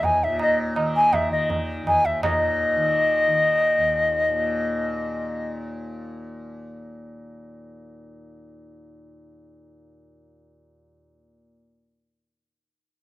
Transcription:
0.00 1.80 D#2 medium
0.00 0.25 A#2 medium
0.00 0.76 D#3 medium
0.00 tabla na medium
0.00 tabla ge medium
0.04 0.25 G#5 loud
0.24 2.25 A#2 medium
0.24 0.41 E5 loud
0.39 0.59 D#5 medium
0.39 tabla na medium
0.76 1.29 D#3 medium
0.76 tabla na medium
0.96 1.15 G#5 loud
1.13 1.32 E5 loud
1.13 tabla na medium
1.13 tabla ge medium
1.29 2.75 D#3 medium
1.29 1.49 D#5 medium
1.50 tabla tin medium
1.50 tabla ge medium
1.81 3.77 D#2 medium
1.87 2.07 G#5 loud
1.87 tabla na medium
1.87 tabla ge medium
2.05 2.23 E5 loud
2.05 tabla te medium
2.23 4.28 A#2 medium
2.23 5.53 D#5 loud
2.23 tabla na loud
2.23 tabla ge loud
2.75 3.27 D#3 medium
3.27 10.42 D#3 medium
3.77 10.92 D#2 medium
4.28 11.43 A#2 medium

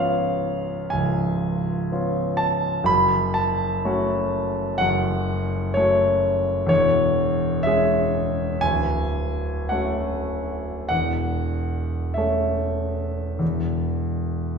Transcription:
0.00 0.88 C#1 soft
0.00 0.88 C#2 soft
0.00 0.88 B3 soft
0.00 0.88 C#4 soft
0.00 0.88 F4 soft
0.00 2.92 C#5 medium
0.00 0.91 F5 medium
0.90 2.86 C#1 soft
0.90 2.86 C#2 soft
0.90 2.39 G#5 medium
1.92 2.86 B3 soft
1.92 2.86 C#4 soft
1.92 2.86 F4 soft
2.37 2.87 A5 medium
2.84 4.74 F#1 soft
2.84 4.74 F#2 medium
2.84 3.36 B5 medium
3.34 4.79 A5 medium
3.85 4.77 A3 soft
3.85 4.77 C#4 soft
3.85 4.77 F#4 soft
4.78 6.66 F#1 soft
4.78 6.66 F#2 medium
4.78 5.74 F#5 medium
5.74 6.67 A3 soft
5.74 6.67 C#4 soft
5.74 6.67 F#4 soft
5.74 6.67 C#5 medium
6.67 8.58 E1 medium
6.67 8.57 E2 medium
6.67 7.64 C#5 medium
7.63 8.59 G#3 soft
7.63 8.59 C#4 soft
7.63 8.60 G#4 soft
7.63 8.62 E5 medium
8.61 10.87 D1 soft
8.61 10.87 D2 soft
8.61 9.69 G#5 medium
9.69 10.87 A3 soft
9.69 10.88 C#4 soft
9.69 10.88 F#4 soft
9.69 10.87 F#5 medium
10.89 13.37 E1 soft
10.89 13.37 E2 soft
10.89 12.16 F#5 medium
12.14 13.37 A3 soft
12.14 13.37 C#4 soft
12.14 14.58 E5 medium
12.18 13.37 A4 soft
13.39 14.58 E1 soft
13.39 14.58 E2 soft

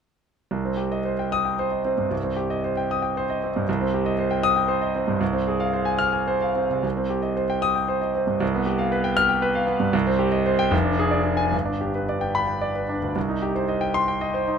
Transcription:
0.51 2.07 C2 medium
0.65 0.86 C4 soft
0.77 0.99 G4 soft
0.92 1.13 D#5 soft
1.05 1.27 C5 soft
1.19 1.40 G5 soft
1.32 1.53 D#6 medium
1.45 1.67 G5 soft
1.59 1.80 C5 medium
1.71 1.93 D#5 soft
1.85 2.06 C4 soft
1.98 2.19 G2 soft
2.11 3.63 C2 medium
2.24 2.45 C4 soft
2.36 2.58 G4 medium
2.50 2.72 D#5 medium
2.64 2.85 C5 soft
2.77 2.98 G5 medium
2.91 3.11 D#6 medium
3.02 3.23 G5 medium
3.17 3.37 C5 medium
3.30 3.50 D#5 medium
3.44 3.63 C4 medium
3.56 3.68 G2 medium
3.69 5.17 C2 medium
3.81 4.01 C4 medium
3.94 4.14 G4 medium
4.06 4.26 D#5 medium
4.19 4.39 C5 medium
4.31 4.51 G5 medium
4.43 4.64 D#6 medium
4.56 4.77 G5 medium
4.68 4.89 C5 medium
4.82 5.02 D#5 medium
4.95 5.16 C4 medium
5.08 5.21 G2 medium
5.21 6.80 C2 medium
5.33 5.54 C4 medium
5.48 5.68 G#4 medium
5.60 5.81 F5 medium
5.73 5.95 C5 medium
5.85 6.08 G#5 medium
5.99 6.21 F6 medium
6.13 6.36 G#5 soft
6.28 6.50 C5 medium
6.42 6.65 F5 soft
6.56 6.78 C4 soft
6.70 6.84 C3 soft
6.83 8.37 C2 medium
6.97 7.18 C4 soft
7.10 7.32 G4 medium
7.22 7.44 D#5 soft
7.37 7.58 C5 medium
7.50 7.71 G5 medium
7.62 7.84 D#6 medium
7.75 7.97 G5 soft
7.88 8.10 C5 medium
8.01 8.23 D#5 soft
8.15 8.36 C4 soft
8.27 8.41 G2 soft
8.41 9.89 C2 medium
8.54 8.75 B3 medium
8.66 8.87 G4 medium
8.79 8.99 F5 medium
8.92 9.12 B4 medium
9.04 9.25 G5 medium
9.17 9.37 F6 loud
9.29 9.50 G5 medium
9.42 9.63 B4 medium
9.55 9.75 F5 medium
9.67 9.88 B3 medium
9.80 9.93 G2 medium
9.93 10.70 C2 medium
10.07 10.27 C4 medium
10.19 10.40 G4 medium
10.32 10.53 D#5 medium
10.46 10.67 C5 medium
10.59 10.72 G5 medium
10.71 11.50 F1 medium
10.85 11.07 D4 medium
10.99 11.21 G#4 medium
11.11 11.33 D5 medium
11.24 11.47 G#4 medium
11.37 11.52 G#5 medium
11.51 13.11 G1 medium
11.65 11.88 D4 medium
11.81 12.03 G4 soft
11.95 12.16 B4 soft
12.09 12.30 D5 soft
12.21 12.43 G5 medium
12.35 12.56 B5 medium
12.47 12.69 G5 soft
12.61 12.83 D5 medium
12.75 12.97 B4 soft
12.89 13.10 D4 soft
13.02 13.15 D2 soft
13.16 14.58 C2 medium
13.29 13.50 D#4 medium
13.42 13.64 G4 medium
13.55 13.77 C5 medium
13.69 13.90 D#5 medium
13.81 14.03 G5 medium
13.94 14.16 C6 medium
14.08 14.30 G5 medium
14.21 14.43 D#5 medium
14.34 14.55 C5 medium
14.48 14.58 D#4 medium

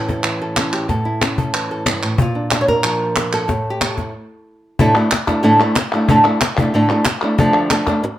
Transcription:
0.00 0.87 A2 medium
0.00 0.22 E3 soft
0.00 0.56 C#4 soft
0.00 0.88 E4 soft
0.08 0.40 A4 soft
0.08 cajon bass medium
0.08 cajon slap soft
0.23 0.87 E3 medium
0.23 clap medium
0.42 0.73 A4 soft
0.57 0.88 C#4 soft
0.57 cajon slap medium
0.57 clap medium
0.73 0.87 G4 soft
0.73 clap medium
0.89 1.86 A2 medium
0.89 1.37 A4 medium
0.89 cajon bass medium
0.89 cajon slap soft
1.05 2.17 E4 soft
1.05 cajon slap soft
1.22 2.17 C#4 soft
1.22 cajon slap medium
1.22 clap medium
1.38 1.70 A4 soft
1.38 cajon bass medium
1.54 2.17 E3 medium
1.54 clap medium
1.71 2.17 A4 medium
1.86 2.02 G2 medium
1.86 cajon slap medium
1.86 clap medium
2.03 2.17 A2 medium
2.03 clap medium
2.18 3.46 A#2 medium
2.18 2.94 F4 medium
2.18 cajon bass medium
2.35 2.50 D4 soft
2.35 cajon slap soft
2.51 3.47 D4 soft
2.51 cajon slap medium
2.51 clap medium
2.61 2.68 C#5 medium
2.68 3.33 A#4 medium
2.68 cajon bass medium
2.68 cajon slap soft
2.84 3.47 F3 medium
2.84 clap medium
3.16 cajon slap medium
3.16 clap medium
3.33 3.80 A4 medium
3.33 clap medium
3.48 4.11 A2 medium
3.48 cajon bass medium
3.48 cajon slap soft
3.65 cajon slap soft
3.70 3.97 G4 medium
3.81 4.79 A4 medium
3.81 cajon slap medium
3.81 clap medium
3.98 4.12 E4 soft
3.98 cajon bass medium
3.98 cajon slap soft
4.79 4.95 A2 medium
4.79 4.95 D3 medium
4.79 4.95 A3 medium
4.79 4.95 D4 medium
4.79 4.95 E4 medium
4.79 4.95 A4 medium
4.79 cajon bass medium
4.96 5.10 A3 soft
4.96 5.10 D4 soft
4.96 5.10 E4 soft
4.96 5.11 A4 medium
5.11 muted nylon-string guitar stroke medium
5.11 cajon slap loud
5.11 clap medium
5.27 5.42 A3 soft
5.27 5.42 D4 soft
5.27 5.43 E4 medium
5.27 5.43 A4 medium
5.27 cajon bass medium
5.27 cajon slap soft
5.27 clap soft
5.43 5.59 A2 medium
5.43 5.59 D3 medium
5.43 5.59 A3 medium
5.43 5.59 D4 medium
5.43 5.60 E4 medium
5.43 5.59 A4 medium
5.60 5.76 A3 soft
5.60 5.76 D4 soft
5.60 5.76 E4 medium
5.60 5.76 A4 medium
5.60 cajon slap soft
5.76 muted nylon-string guitar stroke medium
5.76 cajon slap medium
5.76 clap medium
5.92 6.09 A3 soft
5.92 6.09 D4 soft
5.92 6.09 E4 medium
5.92 6.08 A4 medium
5.92 clap soft
6.08 6.24 A2 medium
6.08 6.25 D3 medium
6.08 6.25 A3 medium
6.08 6.24 D4 medium
6.08 6.24 E4 medium
6.08 6.24 A4 medium
6.08 cajon bass medium
6.25 6.40 A3 soft
6.25 6.40 D4 soft
6.25 6.40 E4 medium
6.25 6.40 A4 medium
6.41 muted nylon-string guitar stroke medium
6.41 cajon slap medium
6.41 clap medium
6.57 6.73 A3 soft
6.57 6.74 D4 medium
6.57 6.73 E4 medium
6.57 6.73 A4 medium
6.57 cajon bass medium
6.57 clap medium
6.74 6.89 A2 medium
6.74 6.89 D3 medium
6.74 6.90 A3 medium
6.74 6.90 D4 medium
6.74 6.89 E4 medium
6.74 6.89 A4 medium
6.90 7.05 A3 soft
6.90 7.06 D4 soft
6.90 7.06 E4 medium
6.90 7.05 A4 medium
6.90 cajon slap soft
7.05 muted nylon-string guitar stroke medium
7.05 cajon slap loud
7.05 clap medium
7.21 7.38 A3 soft
7.21 7.38 D4 soft
7.21 7.38 E4 soft
7.21 7.38 A4 medium
7.21 clap soft
7.38 7.70 D3 medium
7.38 7.70 F3 medium
7.38 7.70 A3 medium
7.38 7.70 D4 medium
7.38 7.71 A4 medium
7.38 cajon bass medium
7.70 7.86 F3 medium
7.70 7.87 A3 medium
7.70 7.87 D4 medium
7.70 7.86 A4 medium
7.70 cajon slap medium
7.70 clap medium
7.87 8.03 A3 soft
7.87 8.03 D4 medium
7.87 8.03 A4 medium
7.87 cajon bass medium
7.87 cajon slap soft
7.87 clap medium
8.03 muted nylon-string guitar stroke medium
8.03 cajon slap soft

